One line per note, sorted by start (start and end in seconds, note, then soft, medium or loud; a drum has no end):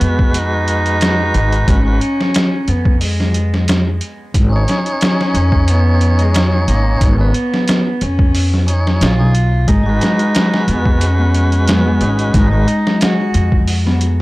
0.00 1.31 F2 medium
0.00 1.80 G#3 medium
0.00 0.38 B3 loud
0.00 1.82 F#4 medium
0.00 1.83 B4 loud
0.00 closed hi-hat medium
0.19 kick medium
0.34 1.70 D#4 loud
0.34 closed hi-hat medium
0.68 closed hi-hat medium
0.86 closed hi-hat soft
1.01 snare loud
1.01 closed hi-hat medium
1.34 1.64 G#1 medium
1.34 closed hi-hat medium
1.52 closed hi-hat soft
1.68 1.97 G#1 loud
1.68 2.70 C#4 loud
1.68 kick loud
1.68 closed hi-hat medium
1.85 2.00 G#3 medium
1.85 2.01 F#4 medium
1.85 2.02 B4 medium
2.01 closed hi-hat medium
2.21 snare medium
2.34 snare loud
2.34 closed hi-hat medium
2.68 3.98 F2 medium
2.68 3.02 B3 loud
2.68 closed hi-hat medium
2.85 kick medium
3.01 3.98 G#3 medium
3.01 open hi-hat medium
3.20 snare soft
3.34 closed hi-hat medium
3.54 snare soft
3.68 snare loud
3.68 closed hi-hat medium
4.01 closed hi-hat medium
4.34 4.64 G#1 loud
4.34 kick loud
4.34 closed hi-hat medium
4.50 7.13 C#4 loud
4.50 7.15 D#4 medium
4.56 7.16 C#5 loud
4.68 snare medium
4.68 closed hi-hat medium
4.86 closed hi-hat soft
5.01 5.71 C#4 loud
5.01 snare loud
5.01 closed hi-hat medium
5.21 snare medium
5.34 6.65 F2 loud
5.34 closed hi-hat medium
5.52 kick medium
5.68 6.22 B3 loud
5.68 closed hi-hat medium
6.01 closed hi-hat medium
6.19 6.37 G#3 loud
6.19 closed hi-hat soft
6.34 6.70 F#3 loud
6.34 snare loud
6.34 closed hi-hat medium
6.68 6.97 G#1 medium
6.68 7.04 A#3 medium
6.68 closed hi-hat medium
7.01 7.31 G#1 loud
7.01 8.04 B3 loud
7.01 kick loud
7.01 closed hi-hat medium
7.18 7.34 C#4 medium
7.18 7.34 D#4 medium
7.18 7.35 B4 medium
7.34 closed hi-hat medium
7.54 snare medium
7.68 snare loud
7.68 closed hi-hat medium
8.01 9.01 F2 loud
8.01 8.69 C#4 loud
8.01 closed hi-hat medium
8.19 kick medium
8.35 open hi-hat medium
8.54 snare soft
8.67 9.14 C#4 medium
8.67 9.15 D#4 medium
8.67 9.15 C#5 medium
8.67 closed hi-hat medium
8.87 snare soft
9.01 9.19 A#1 medium
9.01 9.70 F4 loud
9.01 snare loud
9.01 closed hi-hat medium
9.18 9.65 B1 medium
9.18 9.33 C#4 medium
9.18 9.34 D#4 medium
9.18 9.35 G#4 medium
9.35 closed hi-hat medium
9.67 9.97 G#1 loud
9.67 9.84 G#3 loud
9.67 10.68 D#4 loud
9.67 kick loud
9.67 closed hi-hat medium
9.83 12.47 G#3 loud
9.83 11.66 G#3 medium
9.83 12.48 F#4 medium
9.89 12.50 B4 loud
10.01 snare medium
10.01 closed hi-hat medium
10.19 closed hi-hat soft
10.34 12.62 G#4 medium
10.34 snare loud
10.34 closed hi-hat medium
10.54 snare medium
10.68 11.98 F2 medium
10.68 11.04 B3 medium
10.68 closed hi-hat medium
10.86 kick medium
11.01 11.70 C#4 loud
11.01 closed hi-hat medium
11.19 13.85 B3 medium
11.34 closed hi-hat medium
11.52 closed hi-hat soft
11.68 11.84 G#3 medium
11.68 12.04 B3 loud
11.68 snare loud
11.68 closed hi-hat medium
11.85 12.33 G#3 medium
12.01 12.31 G#1 medium
12.01 12.35 C#4 medium
12.01 14.22 D#4 medium
12.01 closed hi-hat medium
12.19 closed hi-hat soft
12.34 12.64 G#1 loud
12.34 12.51 G#3 loud
12.34 13.04 D#4 loud
12.34 kick loud
12.34 closed hi-hat medium
12.51 12.67 G#3 medium
12.51 14.22 G#3 medium
12.51 12.68 F#4 medium
12.51 12.68 B4 medium
12.68 closed hi-hat medium
12.87 snare medium
13.01 13.68 F#4 loud
13.01 14.22 G#4 medium
13.01 snare loud
13.01 closed hi-hat medium
13.34 14.22 F2 medium
13.34 closed hi-hat medium
13.52 kick medium
13.68 open hi-hat medium
13.85 14.22 B3 medium
13.85 snare soft
14.01 closed hi-hat medium